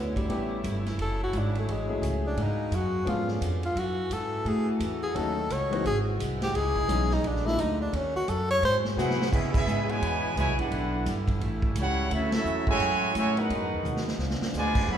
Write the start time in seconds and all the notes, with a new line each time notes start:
Already playing: D2 D3 F#3 G3 B3 E4
0.16 G3, kick, ride
0.28 A1 C#3 A3 B3 C#4 E4 G4, kick, ride
0.64 G1, kick, hi-hat pedal, ride
0.86 snare, ride
0.98 F#1 F#3 G#4 A4, kick, ride
1.24 F#4
1.33 G#1, kick, hi-hat pedal, ride
1.38 D4
1.55 A3, ride
1.68 A1, kick, ride
1.72 G#3
1.88 F#3 A3 C#4 E4 G#4
2.02 C#2, kick, hi-hat pedal, ride
2.26 D4
2.37 G#2 B2 A#3 F#4, kick, ride
2.42 D#4
2.71 F#2, kick, hi-hat pedal, ride
2.75 F#4
3.04 G#2 C#3 D3 F3 B3 C#4 D4 F4 G#4, kick, ride
3.09 F4
3.28 snare
3.41 F2, kick, hi-hat pedal, ride
3.63 F4, ride
3.74 F#2 E3 F#4 A4, kick, ride
3.79 F#4
4.10 G#2 A4, kick, hi-hat pedal, ride
4.45 A2, kick, ride
4.49 G#4
4.79 E2, kick, hi-hat pedal, ride
5.03 G#4
5.14 D#2 D#3 F#3 A3 C#4 D#4 F#4 A4, kick, ride
5.50 C#2 C#5, kick, hi-hat pedal, ride
5.71 E3 G#3 C4 D#4 F#4, ride
5.84 G#1 E3 G#3 C4 F#4 G#4, kick, ride
6.19 C2, kick, hi-hat pedal, ride
6.42 G4, snare, ride
6.54 C#2 C#3 B3 E4 G#4, kick, ride
6.76 kick
6.88 B1 E3 G#3 B3 C#4 D#4, kick, hi-hat pedal, ride
7.11 D#4, snare
7.23 A#1 D3 G#3 A#3 D4 F#4, kick, ride
7.36 snare
7.44 F#3 G#3 A#3 D4 E4 F4, snare
7.58 D2 D#4, kick, hi-hat pedal, ride
7.81 D4
7.92 D#2 D#3 A3 C#4, kick, ride
7.96 C#4
8.16 F#4
8.27 F#2 A4, kick, hi-hat pedal, ride
8.50 C#5, ride
8.61 G#2 E3 G#3 C4, kick, ride
8.65 C5
8.85 snare
8.97 C3 F#3 B3 C4 E4 F#4 G#4 B4 C5 F#5, snare, hi-hat pedal
9.10 snare
9.22 snare
9.31 C#3 G#3 B3 C#4 E4 G#4 B4 E5, kick, crash
9.51 G#3 B3 C#4 E4, kick, crash
9.55 G#4 B4 E5
9.66 G#2, hi-hat pedal
9.86 B2 E3 G#3 E4 C#5 G#5, ride
9.90 B4
10.01 E2, kick, ride
10.33 C#2 B2 E3 G#3, kick
10.37 E4 B4 C#5 G#5, hi-hat pedal, ride
10.47 B1
10.56 G#1 B3 D4 E4 G4 B4 F#5, ride
10.70 B1 D3 E3 G3, kick, ride
11.06 G1, kick, snare, hi-hat pedal, ride
11.28 kick, ride
11.40 A1 C#3 A3, kick, ride
11.62 kick
11.75 C#2 G3 C#4 F#4, kick, hi-hat pedal, ride
11.80 E4 A4 C#5 F#5
12.10 D2 E3 F#3 A3 C#4 E4, kick, ride
12.14 C#4 F#4 A4 E5
12.32 A3 C#4 E4 F#4 A4 E5, snare, ride
12.44 E2, hi-hat pedal
12.67 A2 C#3 G#3 F#4 C#5 E5 G#5, kick
12.79 F#2, kick, ride
13.14 A2 C#3 G#3 C#5 E5 G#5, kick, hi-hat pedal, ride
13.19 F#4
13.35 B3 D#4 F#4 A#4 B4 F#5, ride
13.48 G#2 B2 G#3 B3 F#4, kick, ride
13.60 F#2
13.72 D#2
13.83 D#2, hi-hat pedal, mid tom
13.97 snare
14.08 snare
14.18 C#2 C#3 F3 B3 D4, snare
14.30 snare
14.40 muted upright bass stroke, snare
14.53 D2 B2 F3 G#3 F4, snare, hi-hat pedal
14.57 B4 D5 G#5
14.75 kick, crash
14.88 F#2 F#3 A3 B3 E4, kick
14.92 G#4 C#5 E5 B5